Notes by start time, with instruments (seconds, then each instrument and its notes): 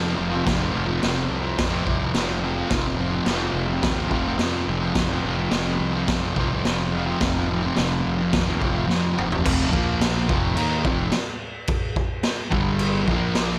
Already playing: fingered electric bass F2, distorted electric guitar F2 C3 F3
0.15 fingered electric bass F1, distorted electric guitar F2 C3
0.21 distorted electric guitar F3
0.30 distorted electric guitar F3
0.35 distorted electric guitar C3
0.44 fingered electric bass F1, distorted electric guitar F2 C3, kick, snare, crash
0.49 distorted electric guitar F3
0.58 distorted electric guitar F3
0.62 distorted electric guitar C3
0.72 fingered electric bass F1, distorted electric guitar F2 C3
0.76 distorted electric guitar F3
0.86 distorted electric guitar F3
0.91 distorted electric guitar C3
1.00 fingered electric bass F1, distorted electric guitar F2 C3, snare, crash
1.04 distorted electric guitar F3
1.30 fingered electric bass C2
1.42 distorted electric guitar F3
1.47 distorted electric guitar C3
1.58 fingered electric bass F2, kick, snare, crash
1.70 distorted electric guitar C3 F3
1.85 fingered electric bass C2, distorted electric guitar F2 C3, kick
1.89 distorted electric guitar F3
1.99 distorted electric guitar F3
2.04 distorted electric guitar C3
2.13 fingered electric bass F1, distorted electric guitar F2 C3, snare, crash
2.18 distorted electric guitar F3
2.40 distorted electric guitar F2 C3
2.45 distorted electric guitar F3
2.54 distorted electric guitar F3
2.59 distorted electric guitar C3
2.68 fingered electric bass F1, distorted electric guitar F2 C3, kick, snare, crash
2.73 distorted electric guitar F3
2.83 distorted electric guitar F3
2.87 distorted electric guitar C3
2.96 distorted electric guitar F2 C3
3.01 distorted electric guitar F3
3.11 distorted electric guitar F3
3.16 distorted electric guitar C3
3.25 fingered electric bass F1, distorted electric guitar F2 C3, snare, crash
3.30 distorted electric guitar F3
3.54 fingered electric bass F1
3.68 distorted electric guitar F3
3.73 distorted electric guitar C3
3.83 fingered electric bass D#2, kick, snare, crash
3.95 distorted electric guitar F3
4.00 distorted electric guitar C3
4.09 fingered electric bass F1, distorted electric guitar F2 C3, kick
4.14 distorted electric guitar F3
4.23 distorted electric guitar F3
4.29 distorted electric guitar C3
4.38 distorted electric guitar F2 C3, fingered electric bass F2, snare, crash
4.43 distorted electric guitar F3
4.66 fingered electric bass F1, distorted electric guitar F2 C3
4.70 distorted electric guitar F3
4.80 distorted electric guitar F3
4.85 distorted electric guitar C3
4.94 fingered electric bass F1, distorted electric guitar F2 C3, kick, snare, crash
4.98 distorted electric guitar F3
5.09 distorted electric guitar F3
5.14 distorted electric guitar C3
5.23 fingered electric bass F1, distorted electric guitar F2 C3
5.28 distorted electric guitar F3
5.37 distorted electric guitar F3
5.42 distorted electric guitar C3
5.50 fingered electric bass F1, distorted electric guitar F2 C3, snare, crash
5.55 distorted electric guitar F3
5.80 fingered electric bass C2
5.93 distorted electric guitar F3
5.97 distorted electric guitar C3
6.08 fingered electric bass F2, kick, snare, crash
6.22 distorted electric guitar F3
6.27 distorted electric guitar C3
6.35 fingered electric bass C2, distorted electric guitar F2 C3, kick
6.40 distorted electric guitar F3
6.50 distorted electric guitar F3
6.55 distorted electric guitar C3
6.64 fingered electric bass F1, distorted electric guitar F2 C3, snare, crash
6.69 distorted electric guitar F3
6.92 distorted electric guitar F2 C3
6.97 distorted electric guitar F3
7.06 distorted electric guitar F3
7.11 distorted electric guitar C3
7.21 fingered electric bass F1, distorted electric guitar F2 C3, kick, snare, crash
7.26 distorted electric guitar F3
7.35 distorted electric guitar F3
7.39 distorted electric guitar C3
7.49 distorted electric guitar F2 C3
7.54 distorted electric guitar F3
7.62 distorted electric guitar F3
7.67 distorted electric guitar C3
7.76 fingered electric bass F1, distorted electric guitar F2 C3, snare, crash
7.81 distorted electric guitar F3
8.06 fingered electric bass F1
8.18 distorted electric guitar F3
8.22 distorted electric guitar C3
8.33 fingered electric bass D#2, kick, snare, crash
8.45 distorted electric guitar F3
8.50 distorted electric guitar C3
8.59 fingered electric bass F1, distorted electric guitar F2 C3, kick
8.64 distorted electric guitar F3
8.72 distorted electric guitar F3
8.76 distorted electric guitar C3
8.87 distorted electric guitar F2 C3, fingered electric bass F2, snare
8.92 distorted electric guitar F3
9.14 distorted electric guitar F2 C3
9.18 fingered electric bass F1, distorted electric guitar F3, mid tom
9.29 distorted electric guitar F3, floor tom
9.34 distorted electric guitar C3
9.42 fingered electric bass F1, distorted electric guitar F2 C3 F3, kick, crash
9.70 fingered electric bass A#1, distorted electric guitar A#2 F3 A#3, kick
10.01 snare, crash
10.27 fingered electric bass F1, distorted electric guitar F2 C3 F3, kick
10.55 fingered electric bass D#2, distorted electric guitar D#3 A#3 D#4, crash
10.84 fingered electric bass F1, distorted electric guitar F2 C3 F3, kick
11.12 snare, crash
11.67 kick, crash
11.96 kick
12.23 snare, crash
12.50 fingered electric bass G1, distorted electric guitar G2 D3 G3, kick
12.79 crash
13.07 fingered electric bass A#1, distorted electric guitar A#2 F3 A#3, kick
13.35 snare, crash